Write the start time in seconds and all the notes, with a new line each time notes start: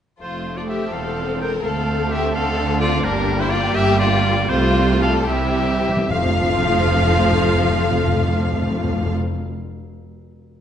0.20 F1 F2 F3 A3 F4 A4 C5
0.57 F4 D5
0.68 G4 E5
0.93 E1 E2 C4 A4 F5
1.40 A#4 G5
1.64 D2 A3 C4 A4 F5
2.10 G4 E5
2.34 D2 D3 A4 F5
2.80 F4 D5
3.04 G1 G2 G3 A#3 D4 G4 A#4
3.40 E4 C5
3.51 F4 D5
3.75 G1 G2 G3 G4 E5
3.99 F4 D5
4.49 C2 C3 A3 F4 C5
5.02 A4 F5
5.28 C2 C3 G3 E4 G4 E5
5.45 C3
5.54 C3
5.62 C3
5.71 C3
5.80 C3
5.89 C3
5.97 C3
6.10 F1 F2 F3 F4 A4 F5
6.18 F2
6.26 F2
6.33 F2
6.41 F2
6.49 F2
6.56 F2
6.64 F2
6.72 F2
6.79 F2
6.86 F2
6.94 F2
7.02 F2
7.10 F2
7.17 F2
7.25 F2
7.32 F2
7.40 F2
7.48 F2
7.55 F2
7.62 F2
7.70 F2
7.77 F2
7.84 F2
7.92 F2
7.99 F2
8.07 F2
8.14 F2
8.22 F2
8.30 F2
8.37 F2
8.46 F2
8.53 F2
8.61 F2
8.68 F2
8.76 F2
8.84 F2
8.91 F2
8.99 F2
9.06 F2